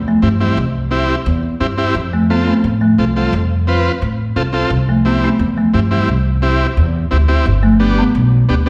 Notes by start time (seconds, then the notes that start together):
Already playing: E2
0.08 F3 A3
0.22 G2 C4 E4 G4
0.40 E3 G3 C4 E4 G4
0.57 C2
0.91 C4 E4 G4
1.26 E2
1.60 G2 C4 E4 G4
1.77 C4 E4 G4
1.95 F2
2.13 F3 A3
2.30 F3 B3 C4 F4 A4
2.47 A3 C4
2.64 A2
2.81 F3 A3
2.98 C2 C4 F4 A4
3.16 E3 G3 C4 F4 A4
3.33 F2
3.67 C4 F4 B4
4.02 A2
4.36 C2 C4 F4 A4
4.53 C4 F4 A4
4.70 C2
4.89 F3 A3
5.05 G3 B3 C4 E4 G4
5.23 A3 C4
5.39 E2
5.57 F3 A3
5.73 G2 C4 E4 G4
5.91 E3 G3 C4 E4 G4
6.08 C2
6.42 C4 E4 G4
6.77 E2
7.11 D2 C4 E4 G4
7.28 C4 E4 G4
7.46 G1
7.63 F3 A3
7.80 B3 D4 G4
7.98 G3 B3
8.15 B1
8.49 D2 B3 D4 G4